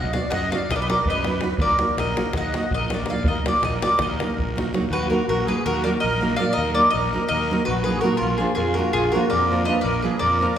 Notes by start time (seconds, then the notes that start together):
Already playing: D#5 F#5
0.13 F#3 B3 D#4 F#4 D5 F5, davul high
0.30 F#2 D#5 F#5, davul high
0.51 F#3 B3 D#4 F#4 F5, davul high
0.55 D5
0.62 davul high
0.69 B1 B4 D#5, davul high, davul low
0.75 A#4 D5
0.80 B4 D#5
0.88 F#3 B3 D#4 F#4 A#4 D5, davul high
0.98 davul high
1.05 F#2 B4, davul low
1.10 D#5
1.15 davul high
1.25 F#3 B3 D#4 F#4, davul high
1.41 F#3 B3 D#4 F#4, davul high
1.51 davul high
1.58 D#2 A#4 D5, davul low
1.79 F#3 A#3 D#4 F#4, davul high
1.97 A#1 A#4 D#5, davul high
2.16 F#3 A#3 D#4 F#4, davul high
2.26 davul high
2.33 D#2 D#5 F#5, davul high, davul low
2.54 F#3 A#3 D#4 F#4, davul high
2.63 davul high
2.71 A#1 A#4 D#5, davul low
2.80 davul high
2.90 F#3 A#3 D#4 F#4 D5, davul high
2.94 A#4
3.06 F#3 A#3 D#4, davul high
3.10 F#4 D5 F5
3.16 davul high
3.24 D#2 D#5, davul low
3.30 A#4
3.35 davul high
3.46 F#3 A#3 D#4 F#4 D5, davul high
3.50 A#4, davul high
3.62 A#1 D#5, davul high
3.68 A#4
3.73 davul high
3.82 F#3 A#3 D#4 F#4 A#4 D5, davul high
3.99 D#2 D#5, davul high, davul low
4.03 A#4
4.20 F#3 A#3 D#4 F#4, davul high
4.30 davul high
4.37 A#1, davul low
4.48 davul high
4.56 F#3 A#3 D#4 F#4, davul high
4.66 davul high
4.74 F#3 A#3 D#4 F#4, davul high
4.82 davul high
4.90 D#2 F#4 B4
5.10 F#3 A#3 D#4 F#4 A#4
5.27 A#1 F#4 A#4
5.45 F#3 A#3 D#4 F#4 G#4 B4
5.49 A#4
5.64 D#2 F#4 A#4
5.84 F#3 A#3 D#4 F#4 A#4 D5
6.00 A#4 D#5
6.04 A#1
6.21 F#3 A#3 D#4 F#4 A#4
6.36 F#3 A#3 D5 F5
6.40 D#4 F#4 A#4
6.52 A#4 D#5
6.58 D#2
6.72 F#3 A#4 D5
6.76 A#3 D#4 F#4 A#4
6.87 A#4 D#5
6.94 A#1
7.13 F#3 A#3 D#4 F#4 A#4
7.26 A#4 D#5
7.31 D#2
7.51 F#3 A#3 D#4 F#4 A#4
7.65 A#1 F#4 B4
7.83 F#3 A#3 D#4 G#4 B4
7.87 F#4 A#4
7.97 F#4 A#4
8.03 F#3 A#3 D#4 F#4 A#4
8.16 F4 A#4
8.22 A#1
8.37 F3 A#3 D4 F4 G#4 A#4
8.54 F2 F4 F#4 G#4 A#4
8.73 F3 F#4 A#4
8.78 A#3 D4 F4 A#4
8.90 A#1 F4 G#4
9.10 F#4 A#4
9.14 F3 A#3 D4 F4 A#4
9.29 A#4 D5
9.33 F2
9.51 F3 A#3 D4 F4 A#4
9.65 F3 A#3 D4 F4 A#4 B4 D#5
9.81 A#1 A#4 D5
10.02 F3 A#3 D4 F4 G#4 A#4 B4
10.19 F2 A#4 D5
10.41 F3 A#3 D4 F4 A#4